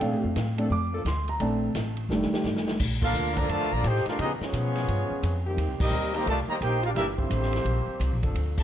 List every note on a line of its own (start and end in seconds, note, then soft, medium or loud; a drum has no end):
0.00 0.13 A#2 medium
0.00 0.34 F3 medium
0.00 0.27 A3 soft
0.00 0.27 C4 soft
0.00 0.34 D4 medium
0.00 0.27 D4 medium
0.00 0.34 A4 loud
0.00 0.55 F5 medium
0.00 ride medium
0.13 0.24 A2 medium
0.24 0.35 F2 medium
0.36 0.70 A2 medium
0.36 snare medium
0.36 hi-hat pedal medium
0.36 ride medium
0.58 0.67 F3 medium
0.58 0.70 A3 soft
0.58 0.67 A#3 medium
0.58 0.70 C4 soft
0.58 0.67 D4 medium
0.58 0.70 D4 medium
0.58 0.67 A4 loud
0.58 ride medium
0.70 1.04 F2 medium
0.70 1.04 D6 medium
0.92 1.01 F3 loud
0.92 1.01 A#3 medium
0.92 1.02 D4 medium
0.92 1.02 A4 loud
1.05 1.39 D2 loud
1.05 1.28 C6 medium
1.05 snare medium
1.05 hi-hat pedal medium
1.05 ride medium
1.28 1.41 A#5 medium
1.28 ride medium
1.40 1.74 A#1 medium
1.40 1.66 A3 medium
1.40 1.67 C4 soft
1.40 1.67 D4 medium
1.40 1.94 A5 medium
1.40 ride medium
1.74 2.08 A1 medium
1.74 snare medium
1.74 hi-hat pedal medium
1.74 ride medium
1.97 ride medium
2.09 2.30 F1 medium
2.09 2.77 D#3 soft
2.09 2.77 G3 soft
2.09 2.77 A3 soft
2.09 2.77 D4 medium
2.09 snare medium
2.22 snare medium
2.32 2.77 D#3 medium
2.32 2.77 A3 medium
2.32 2.77 D4 medium
2.32 2.77 G4 medium
2.32 snare medium
2.44 2.78 G1 loud
2.44 snare medium
2.44 hi-hat pedal medium
2.56 snare medium
2.67 snare medium
2.79 3.13 A#1 medium
2.79 kick medium
2.79 crash loud
3.00 3.11 F3 medium
3.00 3.34 A#3 medium
3.00 3.11 A#3 medium
3.00 3.34 D4 medium
3.00 3.11 D4 medium
3.00 3.36 D4 medium
3.00 3.34 F4 medium
3.00 3.11 A4 medium
3.00 3.35 A4 medium
3.00 3.36 F5 loud
3.00 kick loud
3.00 crash medium
3.05 3.36 A#4 medium
3.13 3.48 D2 loud
3.13 hi-hat pedal medium
3.36 3.48 D3 loud
3.36 3.48 F3 loud
3.36 3.49 A#3 loud
3.36 3.50 F4 medium
3.36 3.50 A4 medium
3.36 3.50 D5 medium
3.36 3.50 A#5 loud
3.36 kick medium
3.36 ride medium
3.49 3.60 F2 medium
3.49 3.71 D3 medium
3.49 3.71 F3 medium
3.49 3.72 A3 medium
3.49 3.71 F4 loud
3.49 3.73 A#4 medium
3.49 3.71 D5 medium
3.49 3.73 A5 loud
3.49 ride medium
3.60 3.71 D2 medium
3.72 3.83 A#1 medium
3.72 3.85 D3 medium
3.72 3.85 F3 medium
3.72 3.85 A#3 medium
3.72 3.85 F4 medium
3.72 3.85 A4 medium
3.72 3.85 D5 medium
3.72 3.85 A#5 loud
3.84 4.04 A2 loud
3.84 4.07 D#4 medium
3.84 4.07 G4 medium
3.84 4.07 A4 medium
3.84 4.07 C5 medium
3.84 4.07 G5 loud
3.84 hi-hat pedal medium
3.84 ride medium
3.96 snare soft
4.06 4.18 A3 medium
4.06 4.18 D4 medium
4.06 4.19 D4 medium
4.06 4.18 F4 medium
4.06 4.19 A4 medium
4.06 4.19 A#4 medium
4.06 4.19 F5 medium
4.06 muted upright bass stroke soft
4.06 snare medium
4.06 ride medium
4.19 4.40 C#3 medium
4.19 4.34 F3 medium
4.19 4.34 B3 medium
4.19 4.31 B3 medium
4.19 4.34 C#4 medium
4.19 4.29 D#4 medium
4.19 4.31 F4 medium
4.19 4.34 G4 medium
4.19 4.31 G#4 medium
4.19 4.31 D#5 loud
4.19 ride medium
4.41 5.41 F3 medium
4.41 5.41 G#3 medium
4.41 5.43 B3 medium
4.41 5.41 C#4 medium
4.41 5.43 F4 medium
4.41 5.43 C#5 medium
4.41 muted upright bass stroke soft
4.41 snare medium
4.45 5.43 G#4 medium
4.53 4.87 B2 loud
4.53 hi-hat pedal medium
4.53 ride medium
4.76 snare soft
4.76 ride medium
4.88 5.09 G2 loud
4.88 ride medium
5.10 muted upright bass stroke soft
5.23 5.57 F2 loud
5.23 hi-hat pedal medium
5.23 ride medium
5.45 5.90 D#3 loud
5.45 5.90 A#3 loud
5.45 5.90 C4 medium
5.45 5.90 G4 loud
5.57 5.68 D#2 medium
5.57 ride medium
5.68 5.80 C2 medium
5.79 5.90 A#1 medium
5.79 6.12 G3 medium
5.79 6.12 A#3 medium
5.79 6.13 C4 medium
5.79 6.12 D#4 medium
5.79 6.13 G4 medium
5.79 6.13 A#4 medium
5.79 6.13 D#5 loud
5.79 kick loud
5.79 crash medium
5.91 6.25 D2 loud
5.91 hi-hat pedal medium
6.14 6.27 D#3 loud
6.14 6.23 D#3 medium
6.14 6.27 G3 loud
6.14 6.27 A#3 loud
6.14 6.23 A#3 medium
6.14 6.23 C4 medium
6.14 6.23 G4 loud
6.14 6.28 G4 medium
6.14 6.28 C5 medium
6.14 6.28 D#5 medium
6.14 6.28 A#5 loud
6.14 ride medium
6.26 6.47 C2 medium
6.26 6.37 A3 medium
6.26 6.38 F4 medium
6.26 6.38 A#4 medium
6.26 6.38 D5 medium
6.26 6.38 A5 loud
6.26 ride medium
6.48 6.54 D#3 medium
6.48 6.54 G3 medium
6.48 6.54 A#3 medium
6.48 6.56 G4 medium
6.48 6.56 C5 medium
6.48 6.56 D#5 medium
6.48 6.56 A#5 loud
6.48 muted upright bass stroke soft
6.61 6.95 A#1 loud
6.61 6.82 A#3 medium
6.61 6.82 D#4 medium
6.61 6.83 D#4 medium
6.61 6.82 G4 medium
6.61 6.83 A#4 medium
6.61 6.83 C5 medium
6.61 6.83 G5 loud
6.61 hi-hat pedal medium
6.61 ride medium
6.82 6.90 D4 medium
6.82 6.88 F4 medium
6.82 6.90 G4 medium
6.82 6.90 A#4 medium
6.82 6.90 F5 medium
6.82 ride medium
6.94 7.30 G1 medium
6.94 7.11 E3 medium
6.94 7.05 G3 medium
6.94 7.05 A#3 medium
6.94 7.11 A#3 medium
6.94 7.11 D4 medium
6.94 7.06 D4 medium
6.94 7.05 E4 medium
6.94 7.11 G4 loud
6.94 7.06 G4 medium
6.94 7.06 A#4 medium
6.94 7.06 E5 loud
6.94 snare soft
6.94 ride medium
7.17 7.62 D3 medium
7.17 8.18 G3 medium
7.17 8.18 A#3 medium
7.17 8.18 C4 medium
7.17 7.63 E4 medium
7.17 8.19 G4 medium
7.17 8.18 C5 loud
7.17 kick medium
7.30 7.64 A1 loud
7.30 hi-hat pedal medium
7.30 ride medium
7.43 snare soft
7.53 snare medium
7.53 ride medium
7.65 7.86 A#1 medium
7.65 ride medium
7.87 muted upright bass stroke soft
8.00 8.11 C2 loud
8.00 hi-hat pedal medium
8.00 ride medium
8.11 8.22 A#1 medium
8.22 8.34 G1 medium
8.22 8.63 F3 medium
8.22 8.63 C4 medium
8.22 8.63 D4 medium
8.22 8.63 A4 loud
8.22 kick medium
8.22 ride medium
8.35 8.63 D2 medium
8.35 ride medium
8.58 8.63 C3 medium
8.58 8.63 F3 medium
8.58 8.63 A3 medium
8.58 8.63 D5 medium
8.58 kick loud
8.58 crash medium